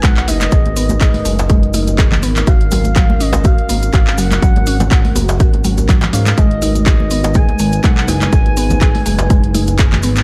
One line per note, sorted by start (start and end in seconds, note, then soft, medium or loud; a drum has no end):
0.00 0.29 B1 medium
0.00 2.43 G#3 medium
0.00 0.16 G#3 loud
0.00 2.43 D#4 medium
0.00 8.29 A#4 medium
0.00 2.43 B4 medium
0.00 0.16 F#5 loud
0.00 kick loud
0.00 clap loud
0.00 closed hi-hat medium
0.00 djembe tone medium
0.00 cabasa soft
0.17 0.29 F#5 loud
0.17 clap medium
0.28 0.48 F#1 loud
0.28 0.35 D#4 medium
0.28 2.23 D#5 loud
0.28 open hi-hat loud
0.28 djembe tone medium
0.28 cabasa loud
0.41 clap medium
0.41 closed hi-hat soft
0.41 high conga medium
0.41 cabasa medium
0.52 1.22 G#1 loud
0.52 0.64 G#4 medium
0.52 kick loud
0.52 closed hi-hat medium
0.52 cabasa soft
0.66 closed hi-hat soft
0.66 djembe tone medium
0.76 0.89 B3 medium
0.76 open hi-hat medium
0.76 cabasa loud
0.89 closed hi-hat soft
0.89 high conga loud
0.89 djembe tone medium
0.89 low conga medium
0.89 cabasa medium
1.01 1.08 G#4 loud
1.01 kick loud
1.01 clap loud
1.01 closed hi-hat medium
1.01 cabasa soft
1.14 open hi-hat medium
1.14 high conga loud
1.25 2.24 F#1 loud
1.25 1.38 G#3 medium
1.25 open hi-hat loud
1.25 djembe tone medium
1.25 cabasa medium
1.39 closed hi-hat soft
1.39 djembe slap loud
1.39 cabasa medium
1.49 1.62 G#3 loud
1.49 kick loud
1.49 closed hi-hat medium
1.49 djembe tone loud
1.49 cabasa soft
1.63 closed hi-hat soft
1.74 1.81 D#4 medium
1.74 open hi-hat medium
1.74 high conga loud
1.74 cabasa loud
1.87 closed hi-hat soft
1.87 djembe tone medium
1.87 cabasa medium
1.98 2.11 G#4 medium
1.98 kick loud
1.98 clap loud
1.98 closed hi-hat medium
1.98 cabasa soft
2.12 clap medium
2.12 high conga medium
2.12 djembe tone loud
2.12 low conga loud
2.23 2.43 G#1 medium
2.23 2.35 B3 medium
2.23 open hi-hat medium
2.23 cabasa medium
2.36 clap medium
2.36 closed hi-hat soft
2.36 high conga medium
2.36 cabasa medium
2.47 3.54 G#1 loud
2.47 6.34 C#4 medium
2.47 2.55 F#4 loud
2.47 6.34 F#4 medium
2.47 3.22 F5 loud
2.47 kick loud
2.47 closed hi-hat medium
2.47 djembe tone medium
2.47 cabasa soft
2.61 closed hi-hat soft
2.71 2.84 F#3 medium
2.71 open hi-hat medium
2.71 djembe tone loud
2.71 cabasa loud
2.84 closed hi-hat soft
2.84 high conga loud
2.84 cabasa medium
2.96 3.09 F#3 loud
2.96 kick loud
2.96 clap loud
2.96 closed hi-hat medium
2.96 cabasa soft
3.10 high conga loud
3.10 djembe tone medium
3.20 3.28 C#4 medium
3.20 3.47 D#5 loud
3.20 open hi-hat loud
3.20 cabasa medium
3.33 closed hi-hat soft
3.33 djembe slap loud
3.33 djembe tone loud
3.33 cabasa medium
3.44 3.57 F#4 medium
3.44 4.20 F5 loud
3.44 kick loud
3.44 closed hi-hat medium
3.44 high conga loud
3.44 cabasa soft
3.58 closed hi-hat soft
3.69 3.90 G#1 medium
3.69 3.81 A#3 medium
3.69 open hi-hat medium
3.69 djembe tone medium
3.69 cabasa loud
3.83 closed hi-hat soft
3.83 cabasa medium
3.93 4.19 G#1 medium
3.93 4.01 F#4 loud
3.93 kick loud
3.93 clap loud
3.93 closed hi-hat medium
3.93 djembe tone loud
3.93 cabasa soft
4.07 clap medium
4.18 4.38 F#1 loud
4.18 4.31 F#3 medium
4.18 5.16 F#5 loud
4.18 open hi-hat medium
4.18 cabasa medium
4.31 clap medium
4.31 closed hi-hat soft
4.31 high conga medium
4.31 djembe tone medium
4.31 cabasa medium
4.42 5.12 G#1 loud
4.42 4.55 F#3 loud
4.42 kick loud
4.42 closed hi-hat medium
4.42 cabasa soft
4.56 closed hi-hat soft
4.56 djembe tone medium
4.66 4.74 C#4 medium
4.66 open hi-hat medium
4.66 cabasa medium
4.80 closed hi-hat soft
4.80 djembe slap medium
4.80 high conga loud
4.80 low conga medium
4.80 cabasa medium
4.91 5.03 F#4 medium
4.91 kick loud
4.91 clap loud
4.91 closed hi-hat medium
4.91 djembe tone medium
4.91 cabasa soft
5.05 open hi-hat medium
5.05 high conga loud
5.16 5.41 F#1 loud
5.16 5.28 A#3 medium
5.16 open hi-hat medium
5.16 djembe tone loud
5.16 cabasa loud
5.29 closed hi-hat soft
5.29 djembe slap loud
5.29 cabasa medium
5.40 6.10 G#1 medium
5.40 5.47 F#4 loud
5.40 kick loud
5.40 closed hi-hat medium
5.40 cabasa soft
5.54 closed hi-hat soft
5.54 djembe tone medium
5.64 5.77 F#3 medium
5.64 open hi-hat medium
5.64 high conga loud
5.64 cabasa medium
5.78 closed hi-hat soft
5.78 djembe tone medium
5.78 cabasa medium
5.89 6.02 F#3 loud
5.89 kick loud
5.89 clap loud
5.89 closed hi-hat medium
5.89 cabasa soft
6.01 clap medium
6.01 closed hi-hat soft
6.01 djembe slap medium
6.01 high conga medium
6.01 low conga loud
6.13 6.33 G#2 medium
6.13 6.20 C#4 medium
6.13 6.39 F5 medium
6.13 open hi-hat medium
6.13 djembe tone medium
6.13 cabasa loud
6.26 clap medium
6.26 closed hi-hat soft
6.26 high conga medium
6.26 cabasa medium
6.37 7.44 G#1 loud
6.37 10.23 G#3 medium
6.37 6.50 G#3 loud
6.37 10.23 D#4 medium
6.37 10.23 B4 medium
6.37 6.85 D#5 loud
6.37 kick loud
6.37 closed hi-hat medium
6.37 cabasa soft
6.51 closed hi-hat soft
6.62 6.69 D#4 medium
6.62 open hi-hat medium
6.62 djembe tone medium
6.62 cabasa medium
6.75 closed hi-hat soft
6.75 high conga medium
6.75 cabasa medium
6.86 6.99 G#4 medium
6.86 7.36 D#5 loud
6.86 kick loud
6.86 clap loud
6.86 closed hi-hat medium
6.86 djembe tone medium
6.86 cabasa soft
7.00 high conga loud
7.11 7.23 B3 medium
7.11 open hi-hat medium
7.11 cabasa medium
7.24 closed hi-hat soft
7.24 djembe slap loud
7.24 djembe tone medium
7.24 cabasa medium
7.34 7.42 G#4 loud
7.34 7.84 G#5 loud
7.34 kick loud
7.34 closed hi-hat medium
7.34 high conga loud
7.34 cabasa soft
7.49 closed hi-hat soft
7.49 djembe tone medium
7.59 7.80 G#1 medium
7.59 7.72 G#3 medium
7.59 open hi-hat medium
7.59 cabasa loud
7.72 closed hi-hat soft
7.72 cabasa medium
7.83 8.10 B1 medium
7.83 7.97 G#3 loud
7.83 7.96 F#5 loud
7.83 kick loud
7.83 clap loud
7.83 closed hi-hat medium
7.83 djembe tone medium
7.83 cabasa soft
7.96 8.07 F#5 loud
7.96 clap medium
8.07 8.28 F#1 loud
8.07 8.16 D#4 medium
8.07 9.99 G#5 loud
8.07 open hi-hat medium
8.07 djembe tone loud
8.07 cabasa medium
8.21 clap medium
8.21 closed hi-hat soft
8.21 high conga medium
8.21 cabasa medium
8.32 9.02 G#1 loud
8.32 8.45 G#4 medium
8.32 10.23 G#4 medium
8.32 kick loud
8.32 closed hi-hat medium
8.32 cabasa soft
8.46 closed hi-hat soft
8.46 djembe tone medium
8.57 8.69 B3 medium
8.57 open hi-hat medium
8.57 cabasa medium
8.70 closed hi-hat soft
8.70 high conga loud
8.70 djembe tone medium
8.70 low conga medium
8.70 cabasa medium
8.81 8.89 G#4 loud
8.81 kick loud
8.81 clap loud
8.81 closed hi-hat medium
8.81 cabasa soft
8.95 open hi-hat medium
8.95 high conga loud
9.06 10.05 F#1 loud
9.06 9.19 G#3 medium
9.06 open hi-hat medium
9.06 djembe tone medium
9.06 cabasa medium
9.18 closed hi-hat soft
9.18 djembe slap loud
9.18 cabasa medium
9.30 9.43 G#3 loud
9.30 kick loud
9.30 closed hi-hat medium
9.30 djembe tone medium
9.30 cabasa soft
9.44 closed hi-hat soft
9.54 9.62 D#4 medium
9.54 open hi-hat medium
9.54 high conga loud
9.54 cabasa medium
9.67 closed hi-hat soft
9.67 djembe tone medium
9.67 cabasa soft
9.78 9.91 G#4 medium
9.78 kick loud
9.78 clap loud
9.78 closed hi-hat medium
9.78 cabasa soft
9.92 clap medium
9.92 high conga medium
9.92 djembe tone medium
9.92 low conga loud
10.03 10.23 G#1 medium
10.03 10.15 B3 medium
10.03 open hi-hat medium
10.03 cabasa medium
10.16 clap medium
10.16 closed hi-hat soft
10.16 high conga medium
10.16 cabasa medium